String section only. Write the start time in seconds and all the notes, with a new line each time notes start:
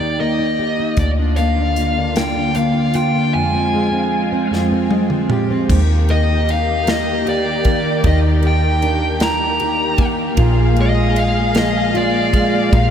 0.99 D3 A#3 F4
3.34 G#3
5.68 D#3 A#3 G4
10.37 A#3 G#4 F5
12.73 G4